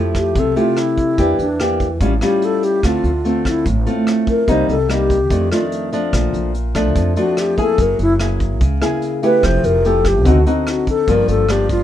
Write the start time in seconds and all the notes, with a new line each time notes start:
Already playing: F2 F3 A3 E4 G4
0.15 G4, kick, cross-stick, closed hi-hat
0.35 C2 C3 A4, kick, closed hi-hat
0.56 A3 E4 F4 G4, closed hi-hat
0.77 E4, cross-stick, closed hi-hat
0.98 kick, closed hi-hat
1.18 E2 E3 A#3 D4 G4, kick, closed hi-hat
1.39 E2 D4, closed hi-hat
1.60 A#3 D4 G4, cross-stick, closed hi-hat
1.80 kick, closed hi-hat
2.00 A1 A2 G3 C#4 F4, kick, closed hi-hat
2.21 G3 C#4 F4 G4, cross-stick, closed hi-hat
2.42 A4, closed hi-hat
2.63 G4, closed hi-hat
2.83 D2 D3 A3 C4 F4, kick, cross-stick, closed hi-hat
3.04 D2, closed hi-hat
3.25 A3 C4 F4, closed hi-hat
3.45 E4, kick, cross-stick, closed hi-hat
3.66 A1 A2, kick, closed hi-hat
3.86 A3 C4 F4, closed hi-hat
4.07 cross-stick, closed hi-hat
4.27 A#4, kick, closed hi-hat
4.48 C2 C3 G3 A#3 D#4 C5, kick, closed hi-hat
4.69 C2 A4, closed hi-hat
4.89 G3 A#3 D#4 G4, cross-stick, closed hi-hat
5.10 kick, closed hi-hat
5.30 F2 D#3 A3 D4, kick, closed hi-hat
5.51 D#3 A3 D4 F4, cross-stick, closed hi-hat
5.72 closed hi-hat
5.92 F3 A3 D4, closed hi-hat
6.13 A#1 A#2, kick, cross-stick, closed hi-hat
6.33 A#1, closed hi-hat
6.55 closed hi-hat
6.75 F3 A3 D4, kick, cross-stick, closed hi-hat
6.96 F2, kick, closed hi-hat
7.16 F3 A3 D4 F#4, closed hi-hat
7.37 G4, cross-stick, closed hi-hat
7.57 A#3 E4 G#4 A4, kick, closed hi-hat
7.78 F#1 F#3 A#4, kick, closed hi-hat
7.99 F#1 E4, closed hi-hat
8.20 A#3 E4 G#4, cross-stick, closed hi-hat
8.40 kick, closed hi-hat
8.61 C#2 C#3, kick, closed hi-hat
8.81 A#3 E4 G#4, cross-stick, closed hi-hat
9.02 closed hi-hat
9.23 A3 E4 G4 B4, closed hi-hat
9.43 F1 F3 C5, kick, cross-stick, closed hi-hat
9.63 F1 A#4, closed hi-hat
9.84 A3 E4 G4 A4, closed hi-hat
10.05 G4, kick, cross-stick, closed hi-hat
10.25 D2 D3 C4 D#4 F#4, kick, closed hi-hat
10.46 C4 D#4 F#4, closed hi-hat
10.67 F#4, cross-stick, closed hi-hat
10.87 A4, kick, closed hi-hat
11.08 G1 G2 F3 A#3 D4 A#4, kick, closed hi-hat
11.28 G1 A4, closed hi-hat
11.49 F3 A#3 D4 G4, cross-stick, closed hi-hat
11.69 F4, kick, closed hi-hat